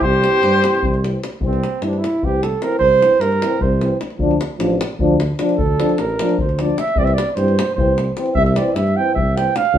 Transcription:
0.01 tuba C2, flugelhorn G4, cornet C5, davul low
0.13 davul high
0.23 euphonium E3 C4, davul high
0.43 tuba G2, davul high
0.54 davul high
0.64 euphonium E3 C4, davul high
0.75 davul high
0.83 tuba C2, davul low
0.94 davul high
1.03 euphonium E3 C4, davul high
1.24 davul high
1.32 davul high
1.41 tuba C2, euphonium E3 C4, davul low
1.46 flugelhorn C4
1.53 davul high
1.64 davul high
1.81 tuba G2, euphonium E3 C4, flugelhorn E4, davul high
1.88 flugelhorn D4
1.93 davul high
1.98 flugelhorn E4
2.04 davul high
2.21 tuba C2, euphonium E3 C4, flugelhorn G4, davul low
2.43 flugelhorn A4, davul high
2.62 euphonium E3 C4, flugelhorn A#4, davul high
2.72 davul high
2.79 tuba C2, flugelhorn C5, davul low
2.92 davul high
3.01 euphonium E3 C4, davul high
3.20 tuba G2, flugelhorn A#4, davul high
3.32 davul high
3.41 euphonium E3 C4, davul high
3.60 tuba C2, flugelhorn C5, davul low
3.80 euphonium E3 C4, davul high
4.01 davul high
4.10 davul high
4.18 tuba D2, euphonium F3 D4, davul low
4.31 davul high
4.41 davul high
4.58 tuba A1, euphonium F3 D4, davul high
4.70 davul high
4.81 davul high
4.99 tuba D2, euphonium F3 D4, davul low
5.20 davul high
5.38 euphonium F3 D4, davul high
5.49 davul high
5.57 tuba D2, flugelhorn A4, davul low
5.78 euphonium F3 D4, davul high
5.89 davul high
5.98 tuba A1, flugelhorn A#4, davul high
6.09 davul high
6.19 euphonium F3 D4, davul high
6.29 davul high
6.38 tuba D2, flugelhorn C5, davul low
6.49 davul high
6.59 euphonium F3 D4, flugelhorn D5, davul high
6.78 flugelhorn E5, davul high
6.88 davul high
6.96 tuba C2, euphonium E3 C4, flugelhorn D5, davul low
7.05 flugelhorn E5, davul high
7.14 flugelhorn D5
7.18 davul high
7.31 flugelhorn C5 D5
7.37 tuba G2, euphonium E3 C4, davul high
7.48 davul high
7.59 davul high
7.75 tuba C2, euphonium E3 C4, flugelhorn C5, davul low
7.98 davul high
8.17 euphonium E3 C4, davul high
8.26 davul high
8.34 tuba C2, flugelhorn E5, davul low
8.45 flugelhorn E5, davul high
8.56 euphonium E3 C4, flugelhorn D5, davul high
8.74 tuba G2, flugelhorn E5, davul high
8.87 davul high
8.96 euphonium E3 C4, flugelhorn G5
9.14 tuba C2, flugelhorn E5, davul low
9.36 euphonium E3 C4, flugelhorn G5, davul high
9.56 flugelhorn F5, davul high
9.65 davul high
9.73 tuba D2, euphonium F3, davul low

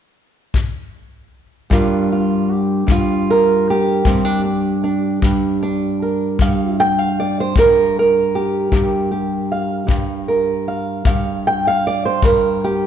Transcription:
0.54 kick
1.70 steel-string acoustic guitar G2 G3 D4 F4 A#4, kick
2.12 steel-string acoustic guitar F4
2.51 steel-string acoustic guitar G4
2.87 steel-string acoustic guitar G2, kick
2.92 steel-string acoustic guitar F4
3.30 steel-string acoustic guitar A#4
3.70 steel-string acoustic guitar G4
4.05 steel-string acoustic guitar G2 C4, kick
4.25 steel-string acoustic guitar D4
4.44 steel-string acoustic guitar D4
4.84 steel-string acoustic guitar D4
5.22 steel-string acoustic guitar G2, kick
5.63 steel-string acoustic guitar D4
6.02 steel-string acoustic guitar A#4
6.39 steel-string acoustic guitar G2 F5, kick
6.80 steel-string acoustic guitar G5
6.99 steel-string acoustic guitar F5
7.20 steel-string acoustic guitar D5
7.40 steel-string acoustic guitar C5
7.56 steel-string acoustic guitar G2 A#4, kick
7.99 steel-string acoustic guitar A#4
8.35 steel-string acoustic guitar G4
8.72 steel-string acoustic guitar G2 G4, kick
9.11 steel-string acoustic guitar G4
9.52 steel-string acoustic guitar F5
9.87 steel-string acoustic guitar G2, kick
10.28 steel-string acoustic guitar A#4
10.68 steel-string acoustic guitar F5
11.05 steel-string acoustic guitar G2 F5, kick
11.47 steel-string acoustic guitar G5
11.67 steel-string acoustic guitar F5
11.87 steel-string acoustic guitar D5
12.05 steel-string acoustic guitar C5
12.23 steel-string acoustic guitar G2 A#4, kick
12.64 steel-string acoustic guitar G4

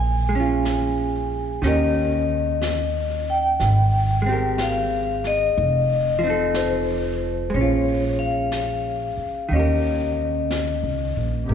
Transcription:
Already playing: upright bass A#1, vibraphone G#5
0.29 hollow-body jazz guitar G#3
0.35 hollow-body jazz guitar C#4
0.40 hollow-body jazz guitar F4
0.65 brush sweep, snare, hi-hat pedal
1.62 upright bass D#2, hollow-body jazz guitar D#3 C#4 G4, brush sweep, snare
1.67 hollow-body jazz guitar A#4, vibraphone D#5
2.62 brush sweep, snare, hi-hat pedal
3.30 vibraphone G5
3.60 upright bass G#1, brush sweep, snare
4.22 hollow-body jazz guitar G#3
4.26 hollow-body jazz guitar C4 G4
4.33 hollow-body jazz guitar A#4
4.58 vibraphone F5, brush sweep, snare, hi-hat pedal
5.24 vibraphone D#5, snare
5.56 upright bass F1, brush sweep
6.19 hollow-body jazz guitar F3
6.24 hollow-body jazz guitar C4 D#4
6.30 hollow-body jazz guitar A4
6.54 vibraphone C5, brush sweep, snare, hi-hat pedal
7.50 hollow-body jazz guitar G#3, brush sweep
7.54 upright bass A#1, hollow-body jazz guitar C#4, vibraphone C#5
7.61 hollow-body jazz guitar F4
8.19 vibraphone F5
8.52 brush sweep, snare, hi-hat pedal
9.17 muted upright bass stroke
9.49 upright bass D#2, hollow-body jazz guitar D#3, brush sweep
9.53 hollow-body jazz guitar C#4 G4, vibraphone D#5
9.59 hollow-body jazz guitar A#4
10.51 brush sweep, snare, hi-hat pedal
10.83 upright bass C#2
11.17 upright bass A#1
11.49 upright bass G#1, string section C3 A#3 G4, brush sweep

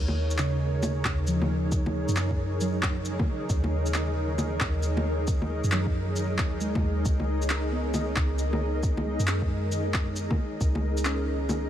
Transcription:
Already playing: 808-style bass D#2, ambient pad D#4 G#4 A#4 C#5
0.08 low bongo
0.30 shaker
0.38 synth keys C#3, clap, shaker
0.71 ambient pad D#5
0.83 low bongo, shaker
1.05 808-style bass D#2, kick, clap
1.27 synth keys F3, shaker
1.42 low bongo
1.72 kick, shaker
1.86 low bongo
2.08 808-style bass F#2, shaker
2.16 clap, shaker
2.31 kick
2.61 synth keys F#3, shaker
2.83 kick, clap
3.05 shaker
3.19 kick, low bongo
3.49 808-style bass D#2, kick, shaker
3.64 low bongo
3.86 shaker
3.94 clap, shaker
4.38 low bongo, shaker
4.60 808-style bass D#2, kick, clap
4.83 shaker
4.97 low bongo
5.27 kick, shaker
5.42 low bongo
5.64 808-style bass F#2, shaker
5.72 synth keys F#3, clap, shaker
5.86 kick
6.16 shaker
6.38 808-style bass D#2, kick, clap
6.61 synth keys G#3, shaker
6.75 kick, low bongo
6.83 808-style bass D#2
7.05 808-style bass C#2, kick, shaker
7.20 low bongo
7.42 shaker
7.50 clap, shaker
7.72 synth keys B3
7.94 low bongo, shaker
8.16 808-style bass C#2, kick, clap
8.38 shaker
8.53 low bongo
8.83 kick, shaker
8.97 low bongo
9.05 synth keys G#3
9.19 808-style bass F#2, shaker
9.27 clap, shaker
9.42 kick
9.72 shaker
9.94 kick, clap
10.16 shaker
10.31 kick, low bongo
10.61 808-style bass C#2, kick, shaker
10.75 low bongo
10.97 shaker
11.05 synth keys C#4, clap, shaker
11.49 low bongo, shaker

